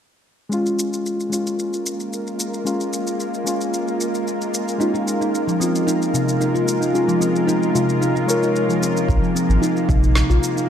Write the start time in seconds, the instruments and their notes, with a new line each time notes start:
0.49 synth keys G#3 C#4, synth drone G#3 A#3 F4 A#4, shaker
0.53 synth keys F4
0.66 shaker
0.79 shaker
0.93 shaker
1.06 shaker
1.20 shaker
1.30 synth keys G#3 C#4, shaker
1.34 synth keys F4
1.47 shaker
1.59 shaker
1.73 shaker
1.86 shaker
2.00 shaker
2.13 shaker
2.27 shaker
2.40 shaker
2.54 shaker
2.65 synth keys G#3 C#4 F4, shaker
2.80 shaker
2.93 shaker
3.07 shaker
3.20 shaker
3.34 shaker
3.44 synth keys G#3 C#4 F4, shaker
3.61 shaker
3.74 shaker
3.88 shaker
4.01 shaker
4.15 shaker
4.28 shaker
4.41 shaker
4.54 shaker
4.68 shaker
4.78 synth keys G#3 C#4, steel tongue drum D#4, shaker
4.82 synth keys F4
4.94 steel tongue drum F4, shaker
5.08 shaker
5.21 steel tongue drum D#4, shaker
5.35 shaker
5.47 steel tongue drum F3, shaker
5.58 synth keys G#3 F4, steel tongue drum C4, shaker
5.75 shaker
5.87 steel tongue drum D#4, shaker
6.02 shaker
6.14 steel tongue drum C3, shaker
6.29 shaker
6.40 steel tongue drum D#4, shaker
6.54 steel tongue drum F4, shaker
6.68 shaker
6.81 steel tongue drum D#4, shaker
6.93 synth keys G#3 C#4 F4, shaker
7.08 steel tongue drum F3, shaker
7.21 steel tongue drum C4, shaker
7.36 shaker
7.47 steel tongue drum D#4, shaker
7.63 shaker
7.73 steel tongue drum C3, synth keys G#3 F4, shaker
7.89 shaker
8.01 steel tongue drum D#4, shaker
8.15 steel tongue drum F4, shaker
8.26 synth keys G#3 C#5, shaker
8.30 synth keys A#4
8.42 steel tongue drum D#4, shaker
8.56 shaker
8.69 steel tongue drum F3, shaker
8.81 steel tongue drum C4, shaker
8.97 shaker
9.08 sub bass A#1, synth drone F3 G#3 A#3 F4, kick, shaker
9.22 steel tongue drum F3, shaker
9.35 steel tongue drum C4, shaker
9.49 sub bass G#1, shaker
9.62 steel tongue drum D#4, shaker
9.77 shaker
9.89 sub bass A#1, steel tongue drum C3, kick, shaker
10.03 shaker
10.15 steel tongue drum D#4, snare, shaker
10.30 sub bass A#1, steel tongue drum F4, shaker
10.43 shaker
10.57 steel tongue drum D#4, shaker